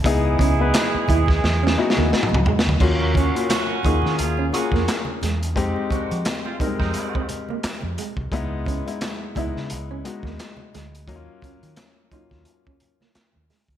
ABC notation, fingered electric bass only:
X:1
M:4/4
L:1/16
Q:"Swing 16ths" 1/4=87
K:Db
V:1 name="Fingered electric bass" clef=bass
D,,2 D,,2 z2 E,,2 _F,,2 z E,, z D,, z =D,, | E,,3 z3 E,, E, E,,2 z F,, z2 _F,,2 | F,, z2 F, z3 F,, z4 z F,, z C,, | D,,3 z3 D,, D, D,,2 z E,, z2 =D,,2 |
E,, z2 E, z3 E,, z4 z E,, z =D,, |]